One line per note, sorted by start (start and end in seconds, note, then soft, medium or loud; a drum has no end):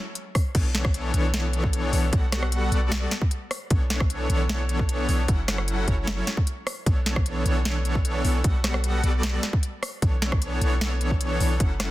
0.15 closed hi-hat medium
0.35 kick loud
0.35 cross-stick medium
0.35 open hi-hat loud
0.55 1.12 B1 loud
0.55 1.12 E3 medium
0.55 1.12 B3 medium
0.55 1.12 D4 medium
0.55 1.12 A4 medium
0.55 1.12 C#5 medium
0.55 kick loud
0.55 closed hi-hat medium
0.55 crash loud
0.75 snare medium
0.75 closed hi-hat medium
0.85 kick loud
0.85 cross-stick medium
0.94 closed hi-hat medium
1.14 1.91 B1 loud
1.14 1.91 E3 loud
1.14 1.91 B3 medium
1.14 1.91 D4 medium
1.14 1.91 A4 medium
1.14 1.91 C#5 loud
1.14 closed hi-hat medium
1.34 snare loud
1.34 closed hi-hat medium
1.53 closed hi-hat medium
1.64 kick medium
1.73 closed hi-hat medium
1.93 2.11 B1 loud
1.93 2.06 E3 medium
1.93 2.06 B3 medium
1.93 2.06 D4 medium
1.93 2.06 A4 medium
1.93 2.06 C#5 medium
1.93 open hi-hat loud
2.13 2.70 B1 loud
2.13 2.70 G3 medium
2.13 2.70 B3 medium
2.13 2.70 F#5 loud
2.13 kick loud
2.13 closed hi-hat medium
2.32 cross-stick medium
2.32 snare medium
2.32 closed hi-hat medium
2.43 cross-stick medium
2.52 closed hi-hat medium
2.72 3.07 B1 loud
2.72 3.09 G3 medium
2.72 3.09 B3 medium
2.72 3.09 F#4 medium
2.72 3.09 A4 medium
2.72 3.09 D5 loud
2.72 closed hi-hat medium
2.92 snare loud
2.92 closed hi-hat medium
3.11 snare medium
3.11 closed hi-hat medium
3.22 kick loud
3.31 closed hi-hat medium
3.51 cross-stick medium
3.51 open hi-hat loud
3.70 4.28 B1 loud
3.70 4.27 E3 medium
3.70 4.27 B3 medium
3.70 4.27 D4 medium
3.70 4.27 A4 medium
3.70 4.27 C#5 medium
3.70 kick loud
3.70 closed hi-hat medium
3.90 snare medium
3.90 closed hi-hat medium
4.00 kick loud
4.00 cross-stick medium
4.10 closed hi-hat medium
4.30 5.07 B1 loud
4.30 5.06 E3 loud
4.30 5.06 B3 medium
4.30 5.06 D4 medium
4.30 5.06 A4 medium
4.30 5.06 C#5 loud
4.30 closed hi-hat medium
4.49 snare loud
4.49 closed hi-hat medium
4.69 closed hi-hat medium
4.79 kick medium
4.89 closed hi-hat medium
5.08 5.26 B1 loud
5.08 5.22 E3 medium
5.08 5.22 B3 medium
5.08 5.22 D4 medium
5.08 5.22 A4 medium
5.08 5.22 C#5 medium
5.08 open hi-hat medium
5.28 5.86 F#1 loud
5.28 5.85 F#3 medium
5.28 5.85 C#4 medium
5.28 5.85 E4 medium
5.28 kick loud
5.28 closed hi-hat medium
5.48 cross-stick medium
5.48 snare medium
5.48 closed hi-hat medium
5.58 cross-stick medium
5.68 closed hi-hat medium
5.88 6.23 F#1 loud
5.88 6.25 F#3 medium
5.88 6.25 C#4 medium
5.88 6.25 E4 medium
5.88 6.25 A4 medium
5.88 6.25 C#5 loud
5.88 kick medium
5.88 closed hi-hat medium
6.07 snare loud
6.07 closed hi-hat medium
6.27 snare medium
6.27 closed hi-hat medium
6.37 kick loud
6.47 closed hi-hat medium
6.67 cross-stick medium
6.67 open hi-hat medium
6.86 7.44 B1 loud
6.86 7.43 E3 medium
6.86 7.43 B3 medium
6.86 7.43 D4 medium
6.86 7.43 A4 medium
6.86 7.43 C#5 medium
6.86 kick loud
6.86 closed hi-hat medium
7.06 snare medium
7.06 closed hi-hat medium
7.16 kick loud
7.16 cross-stick medium
7.26 closed hi-hat medium
7.45 8.23 B1 loud
7.45 8.22 E3 loud
7.45 8.22 B3 medium
7.45 8.22 D4 medium
7.45 8.22 A4 medium
7.45 8.22 C#5 loud
7.45 closed hi-hat medium
7.65 snare loud
7.65 closed hi-hat medium
7.85 closed hi-hat medium
7.95 kick medium
8.05 closed hi-hat medium
8.25 8.42 B1 loud
8.25 8.38 E3 medium
8.25 8.38 B3 medium
8.25 8.38 D4 medium
8.25 8.38 A4 medium
8.25 8.38 C#5 medium
8.25 open hi-hat loud
8.44 9.02 B1 loud
8.44 9.01 F#5 medium
8.44 kick loud
8.44 closed hi-hat medium
8.64 cross-stick medium
8.64 snare medium
8.64 closed hi-hat medium
8.74 cross-stick medium
8.84 closed hi-hat medium
9.03 9.39 B1 loud
9.03 9.41 G3 medium
9.03 9.41 B3 medium
9.03 9.41 F#4 medium
9.03 9.41 A4 medium
9.03 9.41 D5 loud
9.03 closed hi-hat medium
9.23 snare loud
9.23 closed hi-hat medium
9.43 snare medium
9.43 closed hi-hat medium
9.53 kick loud
9.63 closed hi-hat medium
9.83 cross-stick medium
9.83 open hi-hat loud
10.02 10.60 B1 loud
10.02 10.59 E3 medium
10.02 10.59 B3 medium
10.02 10.59 D4 medium
10.02 10.59 A4 medium
10.02 10.59 C#5 medium
10.02 kick loud
10.02 closed hi-hat medium
10.22 snare medium
10.22 closed hi-hat medium
10.32 kick loud
10.32 cross-stick medium
10.42 closed hi-hat medium
10.61 11.38 B1 loud
10.61 11.38 E3 loud
10.61 11.38 B3 medium
10.61 11.38 D4 medium
10.61 11.38 A4 medium
10.61 11.38 C#5 loud
10.61 closed hi-hat medium
10.81 snare loud
10.81 closed hi-hat medium
11.01 closed hi-hat medium
11.11 kick medium
11.21 closed hi-hat medium
11.40 11.58 B1 loud
11.40 11.53 E3 medium
11.40 11.53 B3 medium
11.40 11.53 D4 medium
11.40 11.53 A4 medium
11.40 11.53 C#5 medium
11.40 open hi-hat loud
11.60 11.91 F#3 medium
11.60 11.91 C#4 medium
11.60 11.91 A4 medium
11.60 11.91 F#5 medium
11.60 kick loud
11.60 closed hi-hat medium
11.80 cross-stick medium
11.80 snare medium
11.80 closed hi-hat medium